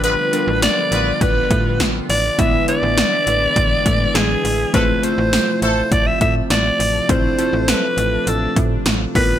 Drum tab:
HH |xxxxxxxo|xxxxxxxo|xxxxxxxo|xxxxxxxo|
TB |--x---x-|--x---x-|--x---x-|--x---x-|
SD |--o---o-|--o---o-|--o---o-|--o---o-|
BD |----oo--|o---oo--|o---oo--|o----o-o|